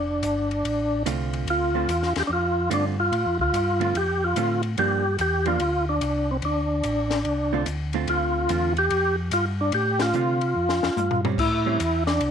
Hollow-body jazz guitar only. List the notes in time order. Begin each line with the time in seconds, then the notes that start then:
1.06 D3 A3 C4 F4
1.75 D3 A3 C4 F4
2.70 D3 A3 C4 F4
3.80 D3 A3 C4 F4
4.37 D3 A3 C4 F4
4.78 F3 A#3 D4
5.46 F3 A#3 D4
7.53 D3 A3 C4 F4
7.94 D3 A3 C4 F4
8.49 D3 A3 C4 F4
10.14 D3 A3 C4 F4
11.25 G3 C4 C#4
11.66 G3 C4 C#4